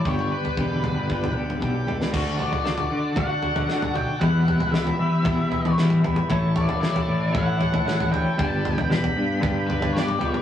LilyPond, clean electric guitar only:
\new Staff \with { instrumentName = "Clean electric guitar" } { \time 4/4 \key d \major \tempo 4 = 115 <g, d g b d' g'>4 <g, d g b d' g'>4 <g b d' g'>8 <g b d' g'>8 <g b d' g'>8 <g b d' g'>8 | <d a d' fis'>8 <a d' fis'>8 <d a d' fis'>4 <d a d' fis'>8 <a d' fis'>8 <d a d' fis'>8 <a d' fis'>8 | <e, b, e g b e'>8 <e g b e'>8 <e g b e'>4 <e, b, e g b e'>8 <e g b e'>8 <e g b e'>8 <e g b e'>8 | <a, e a cis' e'>8 <a cis' e'>8 <e a cis' e'>4 <a, e a cis' e'>8 <a cis' e'>8 <e a cis' e'>8 <a cis' e'>8 |
<g, d g b d' g'>8 <g b d' g'>8 <g b d' g'>4 <g, d g b d' g'>8 <g b d' g'>8 <g b d' g'>8 <g b d' g'>8 | }